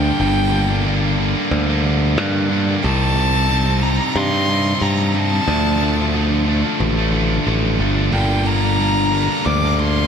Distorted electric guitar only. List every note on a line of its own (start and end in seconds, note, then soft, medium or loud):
0.00 0.16 G2 loud
0.00 0.17 D3 medium
0.00 0.20 A#3 medium
0.00 0.20 D4 medium
0.05 0.19 G3 medium
0.17 0.83 G2 loud
0.17 0.50 D3 loud
0.17 0.52 G3 loud
0.17 0.53 A#3 loud
0.17 0.53 D4 loud
0.51 0.84 D3 medium
0.51 0.70 G3 medium
0.51 0.69 A#3 medium
0.51 0.67 D4 medium
0.68 0.86 G3 medium
0.68 0.86 A#3 medium
0.68 0.87 D4 medium
0.84 1.34 G2 loud
0.84 1.16 D3 loud
0.84 1.04 G3 loud
0.84 1.02 A#3 loud
0.84 1.00 D4 loud
1.01 1.19 G3 medium
1.01 1.20 A#3 medium
1.01 1.20 D4 medium
1.18 1.67 D3 medium
1.18 1.36 G3 medium
1.18 1.35 A#3 medium
1.18 1.33 D4 loud
1.34 1.69 G3 medium
1.34 1.67 A#3 medium
1.34 1.66 D4 medium
1.67 1.84 G3 medium
1.67 1.85 A#3 medium
1.67 1.86 D4 medium
1.84 2.16 D3 medium
1.84 2.17 G3 medium
1.84 2.18 A#3 loud
1.84 2.19 D4 loud
2.17 2.81 G2 loud
2.17 2.48 D3 loud
2.17 2.49 G3 loud
2.17 2.50 A#3 loud
2.17 2.51 D4 loud
2.49 2.81 D3 medium
2.49 2.69 G3 medium
2.49 2.67 A#3 medium
2.49 2.65 D4 medium
2.66 2.82 G3 medium
2.66 2.82 A#3 medium
2.66 2.81 D4 medium
2.82 3.14 C3 loud
2.82 3.15 G3 loud
2.82 3.18 C4 loud
2.82 3.17 D#4 loud
3.15 3.47 C3 medium
3.15 3.34 G3 medium
3.15 3.33 C4 medium
3.15 3.31 D#4 medium
3.32 3.49 G3 medium
3.32 3.51 C4 medium
3.32 3.51 D#4 medium
3.48 3.80 C3 loud
3.48 3.67 G3 loud
3.48 3.67 C4 loud
3.48 3.64 D#4 loud
3.65 3.81 G3 medium
3.65 3.83 C4 medium
3.65 3.83 D#4 medium
3.81 4.32 C3 medium
3.81 4.00 G3 medium
3.81 3.98 C4 loud
3.81 3.96 D#4 loud
3.97 4.33 G3 medium
3.97 4.31 C4 medium
3.97 4.29 D#4 medium
4.31 4.47 G3 medium
4.31 4.48 C4 medium
4.31 4.49 D#4 medium
4.47 4.79 C3 medium
4.47 4.81 G3 medium
4.47 4.81 C4 medium
4.47 4.82 D#4 medium
4.80 5.12 C3 medium
4.80 5.14 G3 loud
4.80 5.15 C4 loud
4.80 5.16 D#4 loud
5.14 5.45 C3 medium
5.14 5.32 G3 medium
5.14 5.31 C4 medium
5.14 5.28 D#4 medium
5.30 5.47 G3 medium
5.30 5.46 C4 medium
5.30 5.45 D#4 medium
5.46 5.78 D3 medium
5.46 5.81 F3 loud
5.46 5.81 A3 loud
5.46 5.83 D4 loud
5.80 6.11 D3 medium
5.80 5.99 F3 medium
5.80 5.96 A3 medium
5.80 5.95 D4 loud
5.95 6.13 F3 medium
5.95 6.13 A3 medium
5.95 6.15 D4 medium
6.12 6.44 D3 loud
6.12 6.32 F3 loud
6.12 6.29 A3 loud
6.12 6.28 D4 loud
6.29 6.46 F3 medium
6.29 6.46 A3 medium
6.29 6.49 D4 medium
6.46 6.96 D3 medium
6.46 6.64 F3 medium
6.46 6.62 A3 medium
6.46 6.61 D4 loud
6.61 6.97 F3 medium
6.61 6.95 A3 medium
6.61 6.94 D4 medium
6.95 7.12 F3 medium
6.95 7.12 A3 medium
6.95 7.14 D4 medium
7.11 7.43 D3 medium
7.11 7.45 F3 medium
7.11 7.45 A3 loud
7.11 7.47 D4 medium
7.44 7.77 D3 medium
7.44 7.79 F3 loud
7.44 7.79 A3 loud
7.44 7.81 D4 loud
7.78 8.10 D3 medium
7.78 7.97 F3 medium
7.78 7.95 A3 medium
7.78 7.94 D4 medium
7.94 8.12 F3 medium
7.94 8.11 A3 medium
7.94 8.13 D4 medium
8.10 8.77 G2 medium
8.10 8.42 D3 medium
8.10 8.44 G3 loud
8.10 8.46 A#3 loud
8.10 8.47 D4 loud
8.44 8.78 D3 medium
8.44 8.64 G3 medium
8.44 8.62 A#3 medium
8.44 8.61 D4 medium
8.61 8.79 G3 medium
8.61 8.80 A#3 medium
8.61 8.81 D4 medium
8.78 10.07 G2 loud
8.78 9.11 D3 loud
8.78 8.98 G3 loud
8.78 8.97 A#3 loud
8.78 8.95 D4 loud
8.95 9.13 G3 medium
8.95 9.14 A#3 medium
8.95 9.15 D4 medium
9.12 9.62 D3 medium
9.12 9.31 G3 medium
9.12 9.29 A#3 medium
9.12 9.27 D4 medium
9.28 9.65 G3 medium
9.28 9.64 A#3 medium
9.28 9.61 D4 medium
9.62 9.79 G3 medium
9.62 9.81 A#3 medium
9.62 9.80 D4 medium
9.78 10.07 D3 medium
9.78 10.07 G3 medium
9.78 10.07 A#3 medium
9.78 10.07 D4 medium